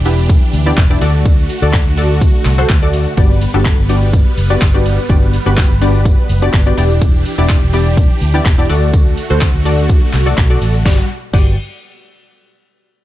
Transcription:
Already playing: fingered electric bass E1, supersaw synth E3 D4 G4
0.05 synth stab B3 D4 E4 G4 B4, open hi-hat, tambourine, shaker
0.18 tambourine, shaker
0.29 kick, closed hi-hat, tambourine, shaker
0.42 shaker
0.53 fingered electric bass D2, open hi-hat, tambourine, shaker
0.66 synth stab B3 D4 E4 G4 D5, tambourine, shaker
0.77 fingered electric bass E1, kick, clap, closed hi-hat, tambourine, shaker
0.90 synth stab B3 D4 E4 G4 D5, shaker
1.01 fingered electric bass D2, supersaw synth D3 A3 F#4, synth stab F#4 A4 D5, open hi-hat, tambourine, shaker
1.14 tambourine, shaker
1.25 kick, closed hi-hat, tambourine, shaker
1.38 tambourine, shaker
1.49 open hi-hat, tambourine, shaker
1.62 fingered electric bass D2, synth stab F#4 A4 D5, shaker
1.73 kick, clap, closed hi-hat, tambourine, shaker
1.86 fingered electric bass D2, shaker
1.97 synth stab F#4 A4 D5, open hi-hat, tambourine, shaker
2.10 shaker
2.21 kick, closed hi-hat, tambourine, shaker
2.34 shaker
2.45 fingered electric bass C2, clap, open hi-hat, tambourine, shaker
2.58 synth stab F#4 A4 C5, shaker
2.69 fingered electric bass D2, kick, clap, closed hi-hat, tambourine, shaker
2.82 synth stab F#4 A4 D5, shaker
2.93 open hi-hat, tambourine, shaker
3.06 tambourine, shaker
3.17 fingered electric bass G1, supersaw synth G3 B3 B4, synth stab B3 D4 F#4 G4 D5, kick, closed hi-hat, tambourine, shaker
3.30 tambourine, shaker
3.41 open hi-hat, tambourine, shaker
3.54 fingered electric bass G1, synth stab B3 D4 F#4 G4 A4, shaker
3.65 kick, clap, closed hi-hat, tambourine, shaker
3.78 fingered electric bass G1, shaker
3.89 synth stab B3 D4 F#4 G4 D5, open hi-hat, tambourine, shaker
4.02 shaker
4.13 kick, closed hi-hat, tambourine, shaker
4.26 shaker
4.38 fingered electric bass F#1, open hi-hat, tambourine, shaker
4.50 synth stab B3 D4 F#4 G4 D5, tambourine, shaker
4.61 fingered electric bass G1, kick, clap, closed hi-hat, tambourine, shaker
4.74 synth stab B3 D4 F#4 G4 D5, shaker
4.86 open hi-hat, tambourine, shaker
4.98 tambourine, shaker
5.09 fingered electric bass G1, synth stab B3 D4 F#4 G4 D5, kick, closed hi-hat, tambourine, shaker
5.22 tambourine, shaker
5.33 open hi-hat, tambourine, shaker
5.46 fingered electric bass G1, synth stab B3 D4 F#4 G4 B4, shaker
5.57 kick, clap, closed hi-hat, tambourine, shaker
5.70 fingered electric bass G1, shaker
5.81 synth stab B3 D4 F#4 G4 D5, open hi-hat, tambourine, shaker
5.94 tambourine, shaker
6.05 kick, closed hi-hat, tambourine, shaker
6.18 shaker
6.29 fingered electric bass F#1, open hi-hat, tambourine, shaker
6.42 synth stab B3 D4 F#4 G4 D5, tambourine, shaker
6.53 fingered electric bass G1, kick, clap, closed hi-hat, tambourine, shaker
6.66 synth stab B3 D4 F#4 G4 D5, shaker
6.77 fingered electric bass E1, supersaw synth E3 D4 G4, synth stab B3 D4 E4 G4 D5, open hi-hat, tambourine, shaker
6.90 tambourine, shaker
7.01 kick, closed hi-hat, tambourine, shaker
7.14 tambourine, shaker
7.25 open hi-hat, tambourine, shaker
7.38 fingered electric bass E1, synth stab B3 D4 E4 G4 D5, shaker
7.49 kick, clap, closed hi-hat, tambourine, shaker
7.62 fingered electric bass E1, shaker
7.73 synth stab B3 D4 E4 G4 D5, open hi-hat, tambourine, shaker
7.86 tambourine, shaker
7.97 kick, closed hi-hat, tambourine, shaker
8.10 shaker
8.21 fingered electric bass D2, open hi-hat, tambourine, shaker
8.34 synth stab B3 D4 E4 G4 D5, tambourine, shaker
8.45 fingered electric bass E1, kick, clap, closed hi-hat, tambourine, shaker
8.58 synth stab B3 D4 E4 G4 D5, shaker
8.69 fingered electric bass D2, supersaw synth D3 A3 F#4, synth stab F#4 A4 D5, open hi-hat, tambourine, shaker
8.82 shaker
8.93 kick, closed hi-hat, tambourine, shaker
9.06 tambourine, shaker
9.18 open hi-hat, tambourine, shaker
9.30 fingered electric bass D2, synth stab F#4 A4 C5, shaker
9.41 kick, clap, closed hi-hat, tambourine, shaker
9.54 fingered electric bass D2, shaker
9.65 synth stab F#4 A4 D5, open hi-hat, tambourine, shaker
9.78 shaker
9.89 kick, closed hi-hat, tambourine, shaker
10.02 shaker
10.13 fingered electric bass C2, clap, open hi-hat, tambourine, shaker
10.26 synth stab F#4 A4 D5, tambourine, shaker
10.37 fingered electric bass B1, kick, clap, closed hi-hat, tambourine, shaker
10.50 synth stab F#4 A4 D5, shaker
10.62 fingered electric bass A1, open hi-hat, tambourine, shaker
10.74 tambourine, shaker
10.85 supersaw synth G3, synth stab B3 F#4 G4 D5, kick, snare, tambourine
11.33 fingered electric bass G1, synth stab B3 F#4 G4 D5, kick, crash, tambourine

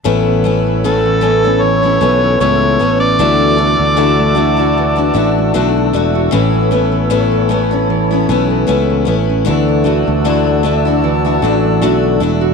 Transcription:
0.04 fretless electric bass A1, steel-string acoustic guitar A2 A3 B3 C#4 E4, nylon-string guitar E3, flute section A4 C#5 B5 E6
0.27 nylon-string guitar B3
0.44 steel-string acoustic guitar A3 B3 C#4 E4
0.67 nylon-string guitar E3
0.84 steel-string acoustic guitar A2 A3 B3 C#4 E4, harmonica A4
1.06 nylon-string guitar E3
1.21 steel-string acoustic guitar A3 B3 C#4 E4
1.44 steel-string acoustic guitar B3 C#4 E4
1.62 nylon-string guitar E3, harmonica C#5
1.83 steel-string acoustic guitar B3 C#4 E4
2.01 fretless electric bass B1, steel-string acoustic guitar A3 B3 C#4 E4
2.24 nylon-string guitar E3
2.40 fretless electric bass C#2, steel-string acoustic guitar A2 A3 B3 C#4 E4, harmonica C#5
2.62 nylon-string guitar E3
2.79 fretless electric bass A1, steel-string acoustic guitar A3 B3 C#4 E4
3.00 nylon-string guitar C#4, harmonica D5
3.18 fretless electric bass D2, steel-string acoustic guitar D3 A3 D4 E4 F#4, nylon-string guitar E3, flute section F#4 D5 A5
3.41 nylon-string guitar E4
3.57 steel-string acoustic guitar A3 D4 E4 F#4
3.79 fretless electric bass D2, nylon-string guitar A3
3.97 steel-string acoustic guitar D3 A3 D4 E4 F#4
4.19 nylon-string guitar A3
4.35 steel-string acoustic guitar A3 D4 E4 F#4
4.57 steel-string acoustic guitar D4 E4 F#4
4.78 nylon-string guitar E3
4.96 steel-string acoustic guitar D4 E4 F#4
5.14 fretless electric bass A1, steel-string acoustic guitar A3 D4 E4 F#4
5.38 nylon-string guitar A3
5.54 fretless electric bass B1, steel-string acoustic guitar D3 A3 D4 E4 F#4
5.77 nylon-string guitar A3
5.93 fretless electric bass E1, steel-string acoustic guitar A3 D4 E4 F#4
6.15 nylon-string guitar F#4
6.31 fretless electric bass A1, steel-string acoustic guitar A2 A3 B3 C#4 E4, nylon-string guitar E3, flute section A4 C#5 B5
6.54 nylon-string guitar B3
6.71 steel-string acoustic guitar A3 B3 C#4 E4
6.92 nylon-string guitar E3
7.10 steel-string acoustic guitar A2 A3 B3 C#4 E4
7.32 nylon-string guitar E3
7.49 steel-string acoustic guitar A3 B3 C#4 E4
7.71 steel-string acoustic guitar B3 C#4 E4
7.90 nylon-string guitar E3
8.11 steel-string acoustic guitar B3 C#4 E4
8.29 fretless electric bass B1, steel-string acoustic guitar A3 B3 C#4 E4
8.50 nylon-string guitar E3
8.67 fretless electric bass C#2, steel-string acoustic guitar A2 A3 B3 C#4 E4
8.90 nylon-string guitar E3
9.05 fretless electric bass A1, steel-string acoustic guitar A3 B3 C#4 E4
9.30 nylon-string guitar C#4
9.45 fretless electric bass D2, steel-string acoustic guitar D3 A3 D4 E4 F#4, nylon-string guitar E3, flute section F#4 D5 A5 E6
9.69 nylon-string guitar E4
9.84 steel-string acoustic guitar A3 D4 E4 F#4
10.07 fretless electric bass D2, nylon-string guitar A3
10.25 steel-string acoustic guitar D3 A3 D4 E4 F#4
10.47 nylon-string guitar A3
10.63 steel-string acoustic guitar A3 D4 E4 F#4
10.85 steel-string acoustic guitar D4 E4 F#4
11.04 nylon-string guitar E3
11.25 steel-string acoustic guitar D4 E4 F#4
11.42 fretless electric bass A1, steel-string acoustic guitar A3 D4 E4 F#4
11.63 nylon-string guitar A3
11.82 fretless electric bass B1, steel-string acoustic guitar D3 A3 D4 E4 F#4
12.03 nylon-string guitar A3
12.20 fretless electric bass E1, steel-string acoustic guitar A3 D4 E4 F#4
12.41 nylon-string guitar F#4

